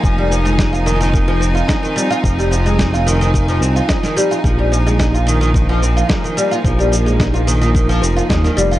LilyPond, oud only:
\new Staff \with { instrumentName = "Oud" } { \clef bass \time 4/4 \key f \minor \tempo 4 = 109 f16 g16 f16 aes16 ees'16 f'16 ees16 ees16 ees16 f16 c'16 f'16 ees'16 ees16 g16 f'16 | f16 g16 f16 aes16 ees'16 f'16 ees16 ees16 ees16 f16 c'16 f'16 ees'16 ees16 g16 f'16 | f16 g16 f16 aes16 ees'16 f'16 ees16 ees16 ees16 f16 c'16 f'16 ees'16 ees16 g16 f'16 | f16 g16 f16 aes16 ees'16 f'16 ees16 ees16 ees16 f16 c'16 f'16 ees'16 ees16 g16 f'16 | }